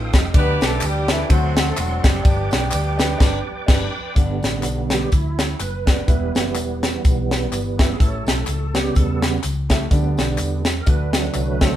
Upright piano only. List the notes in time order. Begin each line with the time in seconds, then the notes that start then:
Already playing: A3 D#4 F4 B4 G5
0.14 G4 D#5
0.34 D3 D4 G4 B4
0.61 D4 G4 B4
1.07 D4 G4 A4
1.29 D3 A3 C4 D4 F#4 C5
2.23 G2 D4 G4 B4
2.50 D4 G4 D5
2.98 D4 G4 B4
3.18 D4 G4 B4
3.67 D4 G4 B4
4.15 G2 B3 D4 G4 D5
5.85 B3 D4 G4 D5
6.06 E3 B3 E4 G4 E5
7.78 B3 E4 G4 E5
7.99 A2 A3 E4 G4 B4
8.06 C#5
9.69 A3 E4 G4 E5
9.90 D3 B3 D4 G4 D5
10.86 D3 A3 D4 F#4 D5
11.60 A3 D4 F#4 C5